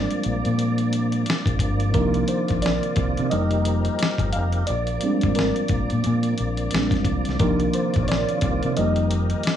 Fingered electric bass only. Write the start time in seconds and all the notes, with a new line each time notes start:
0.26 A#1
0.46 A#2
1.47 A#1
1.60 G1
1.95 C2
2.52 A#1
2.98 C2
3.19 C3
3.33 F1
4.19 G1
4.36 F1
4.70 A#1
5.24 G#1
5.70 A#1
5.92 A#2
6.06 A#2
6.40 A#1
6.74 A#1
7.06 C2
7.28 C2
7.41 C2
7.97 A#1
8.43 C2
8.64 C3
8.78 F1